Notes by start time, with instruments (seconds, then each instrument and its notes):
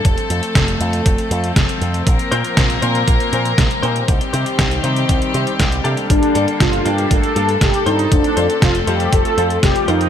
Already playing: string section A4
0.05 picked electric bass F1, string section F3 A3 C4, kick, closed hi-hat
0.18 closed hi-hat
0.30 picked electric bass F2, closed hi-hat
0.43 closed hi-hat
0.55 picked electric bass F1, kick, snare, closed hi-hat
0.68 closed hi-hat
0.80 picked electric bass F2, closed hi-hat
0.93 closed hi-hat
1.06 picked electric bass F1, kick, closed hi-hat
1.18 closed hi-hat
1.31 picked electric bass F2, closed hi-hat
1.44 closed hi-hat
1.56 picked electric bass F1, kick, snare, closed hi-hat
1.69 closed hi-hat
1.81 picked electric bass F2, closed hi-hat
1.94 closed hi-hat
2.07 picked electric bass A#1, string section A#3 A#4, kick, closed hi-hat
2.19 closed hi-hat
2.32 picked electric bass A#2, clean electric guitar C4 F4 A#4 C5, closed hi-hat
2.44 closed hi-hat
2.57 picked electric bass A#1, kick, snare, closed hi-hat
2.70 closed hi-hat
2.82 picked electric bass A#2, clean electric guitar C4 F4 A#4 C5, closed hi-hat
2.95 closed hi-hat
3.07 picked electric bass A#1, kick, closed hi-hat
3.20 closed hi-hat
3.32 picked electric bass A#2, clean electric guitar C4 F4 A#4 C5, closed hi-hat
3.45 closed hi-hat
3.58 picked electric bass A#1, kick, snare, closed hi-hat
3.71 closed hi-hat
3.83 picked electric bass A#2, clean electric guitar C4 D#4 G4 C5, closed hi-hat
3.96 closed hi-hat
4.08 picked electric bass C2, string section D#3 G3 C4 G4, kick, closed hi-hat
4.21 closed hi-hat
4.33 picked electric bass C3, clean electric guitar C4 D#4 G4 C5, closed hi-hat
4.46 closed hi-hat
4.59 picked electric bass C2, kick, snare, closed hi-hat
4.71 closed hi-hat
4.83 picked electric bass C3, clean electric guitar C4 D#4 G4 C5, closed hi-hat
4.96 closed hi-hat
5.09 picked electric bass C2, kick, closed hi-hat
5.22 closed hi-hat
5.34 picked electric bass C3, clean electric guitar C4 D#4 G4 C5, closed hi-hat
5.47 closed hi-hat
5.60 picked electric bass C2, kick, snare, closed hi-hat
5.72 closed hi-hat
5.84 picked electric bass C3, clean electric guitar A#3 D4 G4 A4, closed hi-hat
5.97 closed hi-hat
6.10 picked electric bass G1, string section A#3 D4 A4, analog polysynth D4, kick, closed hi-hat
6.23 closed hi-hat
6.35 picked electric bass G2, clean electric guitar A#3 D4 G4 A4, closed hi-hat
6.48 closed hi-hat
6.60 picked electric bass G1, analog polysynth F4, kick, snare, closed hi-hat
6.73 closed hi-hat
6.85 picked electric bass G2, clean electric guitar A#3 D4 G4 A4, analog polysynth G4, closed hi-hat
6.98 closed hi-hat
7.11 picked electric bass G1, analog polysynth A4, kick, closed hi-hat
7.24 closed hi-hat
7.36 picked electric bass G2, clean electric guitar A#3 D4 G4 A4, closed hi-hat
7.49 closed hi-hat
7.61 picked electric bass G1, analog polysynth G4, kick, snare, closed hi-hat
7.74 closed hi-hat
7.86 picked electric bass G2, clean electric guitar C4 F4 A4 C5, analog polysynth D#4, closed hi-hat
7.99 closed hi-hat
8.12 picked electric bass F1, string section F3 A3 C4, analog polysynth D4, kick, closed hi-hat
8.24 closed hi-hat
8.37 picked electric bass F2, clean electric guitar C4 F4 A4 C5, closed hi-hat
8.50 closed hi-hat
8.62 picked electric bass F1, analog polysynth F4, kick, snare, closed hi-hat
8.75 closed hi-hat
8.87 picked electric bass F2, clean electric guitar C4 F4 A4 C5, analog polysynth G4, closed hi-hat
9.00 closed hi-hat
9.12 picked electric bass F1, analog polysynth A4, kick, closed hi-hat
9.25 closed hi-hat
9.37 picked electric bass F2, clean electric guitar C4 F4 A4 C5, closed hi-hat
9.50 closed hi-hat
9.63 picked electric bass F1, analog polysynth G4, kick, snare, closed hi-hat
9.76 closed hi-hat
9.88 picked electric bass F2, clean electric guitar C4 F4 A#4 C5, analog polysynth D#4, closed hi-hat
10.01 closed hi-hat